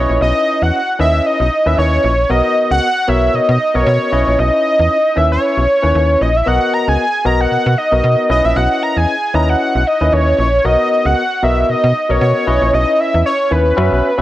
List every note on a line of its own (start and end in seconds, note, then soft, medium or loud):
0.00 0.79 C#4 medium
0.00 0.79 E4 medium
0.00 0.79 B4 medium
0.00 0.18 C#5 medium
0.00 0.79 D#5 medium
0.09 0.19 A#1 medium
0.21 0.33 B1 loud
0.21 0.64 D#5 loud
0.62 0.71 E2 medium
0.62 1.00 F#5 loud
0.99 1.21 D#2 medium
0.99 1.47 C#4 medium
0.99 1.47 E4 medium
0.99 1.47 B4 medium
0.99 1.47 D#5 medium
0.99 1.27 E5 medium
1.26 1.68 D#5 loud
1.40 1.49 B1 medium
1.66 1.75 D#2 medium
1.66 2.12 C#4 medium
1.66 2.12 E4 medium
1.66 2.12 B4 medium
1.66 2.13 D#5 medium
1.66 1.78 E5 medium
1.78 1.99 D#2 medium
1.78 2.32 C#5 loud
2.04 2.25 A#1 medium
2.29 2.42 B1 loud
2.29 2.86 B3 medium
2.29 2.87 F#4 medium
2.29 2.87 A#4 medium
2.29 2.87 D#5 medium
2.29 2.71 D#5 loud
2.71 2.80 C#2 medium
2.71 3.10 F#5 loud
3.07 3.29 B1 medium
3.07 3.55 B3 medium
3.07 3.55 F#4 medium
3.07 3.56 A#4 medium
3.07 3.56 C#5 medium
3.07 3.36 E5 medium
3.34 3.40 B2 soft
3.34 3.77 D#5 loud
3.49 3.58 B2 loud
3.74 3.84 B1 loud
3.74 4.12 B3 medium
3.74 4.12 F#4 medium
3.74 4.12 A#4 medium
3.74 3.87 C#5 medium
3.74 4.11 D#5 medium
3.86 3.98 B2 loud
3.86 4.41 C#5 loud
4.12 4.24 B1 loud
4.12 4.96 C#4 medium
4.12 4.96 E4 medium
4.12 4.96 B4 medium
4.12 4.97 D#5 medium
4.27 4.36 A#1 medium
4.39 4.50 B1 loud
4.39 5.19 D#5 loud
4.79 4.88 E2 medium
5.16 5.38 D#2 loud
5.16 5.64 C#4 medium
5.16 5.64 E4 medium
5.16 5.64 B4 medium
5.16 5.64 E5 medium
5.16 5.31 E5 medium
5.32 6.23 C#5 loud
5.57 5.67 B1 medium
5.82 5.93 D#2 medium
5.82 6.29 C#4 medium
5.82 6.29 E4 medium
5.82 6.29 B4 medium
5.82 6.30 C#5 medium
5.95 6.16 D#2 loud
6.21 6.42 A#1 loud
6.21 6.38 D#5 loud
6.36 6.49 E5 loud
6.46 6.59 B1 loud
6.46 7.03 B3 medium
6.46 7.04 F#4 medium
6.46 7.04 A#4 medium
6.46 7.04 D#5 medium
6.46 6.75 F#5 loud
6.74 6.90 A#5 loud
6.88 6.97 C#2 medium
6.88 7.27 G#5 loud
7.25 7.46 B1 medium
7.25 7.73 B3 medium
7.25 7.73 F#4 medium
7.25 7.73 A#4 medium
7.25 7.73 D#5 medium
7.25 7.42 A#5 loud
7.41 7.79 F#5 loud
7.51 7.57 B2 soft
7.66 7.75 B2 loud
7.78 8.30 D#5 loud
7.91 8.01 B1 medium
7.91 8.29 B3 medium
7.91 8.30 F#4 medium
7.91 8.30 A#4 medium
7.91 8.29 D#5 medium
8.04 8.16 B2 loud
8.29 8.42 B1 loud
8.29 9.14 C#4 medium
8.29 9.14 E4 medium
8.29 9.14 B4 medium
8.29 9.14 D#5 medium
8.29 8.47 D#5 loud
8.44 8.54 A#1 medium
8.44 8.58 E5 loud
8.56 8.68 B1 loud
8.56 8.84 F#5 loud
8.83 8.99 A#5 loud
8.96 9.06 E2 medium
8.96 9.36 G#5 loud
9.34 9.55 D#2 loud
9.34 9.82 C#4 medium
9.34 9.82 E4 medium
9.34 9.82 B4 medium
9.34 9.82 D#5 medium
9.34 9.51 A#5 loud
9.49 9.89 F#5 loud
9.75 9.84 B1 medium
9.87 10.15 D#5 medium
10.01 10.10 D#2 medium
10.01 10.47 C#4 medium
10.01 10.47 E4 medium
10.01 10.47 B4 medium
10.01 10.47 D#5 medium
10.12 10.34 D#2 medium
10.12 10.67 C#5 loud
10.38 10.60 A#1 medium
10.64 10.76 B1 loud
10.64 11.21 B3 medium
10.64 11.21 F#4 medium
10.64 11.22 A#4 medium
10.64 11.22 D#5 medium
10.64 11.07 D#5 loud
11.05 11.15 C#2 medium
11.05 11.45 F#5 loud
11.42 11.64 B1 medium
11.42 11.90 B3 medium
11.42 11.90 F#4 medium
11.42 11.90 A#4 medium
11.42 11.90 D#5 medium
11.42 11.71 E5 medium
11.69 11.75 B2 medium
11.69 12.12 D#5 loud
11.84 11.93 B2 medium
12.09 12.19 B1 medium
12.09 12.47 B3 medium
12.09 12.47 F#4 medium
12.09 12.47 A#4 medium
12.09 12.21 C#5 medium
12.09 12.46 D#5 medium
12.21 12.33 B2 loud
12.21 12.76 C#5 loud
12.47 12.59 B1 medium
12.47 13.31 C#4 medium
12.47 13.31 E4 medium
12.47 13.31 B4 medium
12.47 13.31 D#5 medium
12.62 12.71 A#1 medium
12.73 12.85 B1 loud
12.73 13.01 D#5 loud
13.00 13.25 E5 loud
13.14 13.23 E2 medium
13.26 13.53 C#5 medium
13.51 13.73 D#2 medium
13.51 13.75 C#4 medium
13.51 13.77 E4 medium
13.51 13.76 B4 medium
13.51 14.22 B4 medium
13.51 13.78 C#5 medium
13.77 13.89 F#2 loud
13.77 14.09 C#4 medium
13.77 14.09 F#4 medium
13.77 14.09 B4 medium
13.77 14.09 E5 medium
13.92 14.01 B1 medium
14.18 14.22 B1 medium
14.18 14.22 C#4 medium
14.18 14.22 F#4 medium
14.18 14.22 B4 medium
14.18 14.22 E5 loud